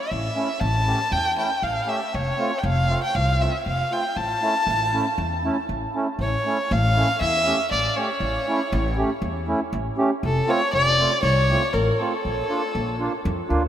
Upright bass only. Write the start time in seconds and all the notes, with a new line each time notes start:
0.11 A1
0.61 A1
1.12 E2
1.62 A1
2.14 F1
2.63 F1
3.15 C2
3.66 F1
4.16 A1
4.67 A1
5.18 E2
5.69 A1
6.19 A1
6.71 A1
7.21 E2
7.71 A1
8.20 A1
8.72 A1
9.22 E2
9.73 A1
10.23 F1
10.73 F1
11.23 C2
11.74 A1
12.25 A#1
12.75 A#1
13.25 F2
13.50 D2